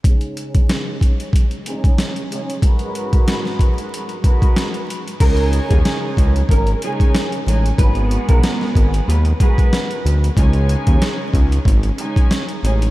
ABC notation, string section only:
X:1
M:4/4
L:1/8
Q:"Swing 16ths" 1/4=93
K:G#m
V:1 name="String section"
[C,G,Dcg]4- [C,G,Dcg] [C,G,Dcg]2 [C,G,Dcg] | [G,,G,FAB]4- [G,,G,FAB] [G,,G,FAB]2 z | [C,G,Dcg]4- [C,G,Dcg] [C,G,Dcg]2 [C,G,Dcg] | [G,,G,B,FG]4- [G,,G,B,FG] [G,,G,FAB]2 z |
[C,G,Dcg]4- [C,G,Dcg] [C,G,Dcg]2 [C,G,Dcg] |]